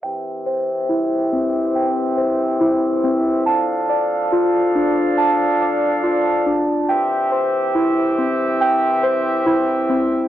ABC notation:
X:1
M:4/4
L:1/8
Q:1/4=140
K:C
V:1 name="Synth keys"
g2 c2 E2 C2 | g2 c2 E2 C2 | a2 d2 F2 D2 | a2 d2 F2 D2 |
g2 c2 E2 C2 | g2 c2 E2 C2 |]
V:2 name="Woodwind section"
[E,CGe]8- | [E,CGe]8 | [F,DAf]8- | [F,DAf]8 |
[E,CGe]8- | [E,CGe]8 |]